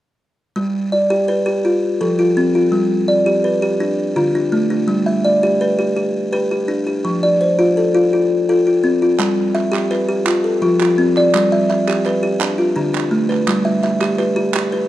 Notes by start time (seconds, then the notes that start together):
0.56 G3
0.92 D5
1.10 G4
1.28 B4
1.46 G4
1.65 F4
2.01 F3 A4
2.19 F4
2.37 C4
2.55 F4
2.72 G3
3.08 D5
3.26 G4
3.44 B4
3.62 G4
3.80 D4
4.16 D3 F4
4.35 D4
4.52 A3
4.70 D4
4.88 G3
5.06 E5
5.25 D5
5.43 G4
5.61 B4
5.79 G4
5.96 G4
6.33 G4 B4
6.51 G4
6.68 D4
6.87 G4
7.05 F3
7.23 D5
7.41 C5
7.59 F4
7.77 A4
7.95 F4
8.13 F4
8.49 F4 A4
8.67 F4
8.84 C4
9.02 F4
9.19 G3, clap
9.55 E5, clap
9.72 G4, clap
9.91 B4, clap
10.09 G4
10.26 F4, clap
10.44 A4
10.62 F3 F4
10.81 F4, clap
10.98 C4
11.17 D5, clap
11.34 G3, clap
11.52 E5
11.70 E5, clap
11.88 G4, clap
12.06 B4, clap
12.23 G4
12.40 D4, clap
12.58 F4
12.76 D3 D4
12.94 D4, clap
13.11 A3
13.29 B4, clap
13.48 G3, clap
13.65 E5
13.83 E5, clap
14.01 G4, clap
14.18 B4, clap
14.36 G4
14.54 G4, clap
14.72 B4